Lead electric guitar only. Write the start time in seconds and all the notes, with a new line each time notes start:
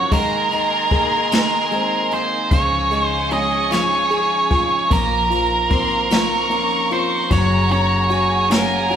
Already playing: C#5
0.13 A#4
2.13 C5
2.53 C#5
3.05 C5
3.33 D#5
3.72 C#5
4.93 A#4
6.93 C5
7.32 C#5
7.72 C#5
8.52 A#4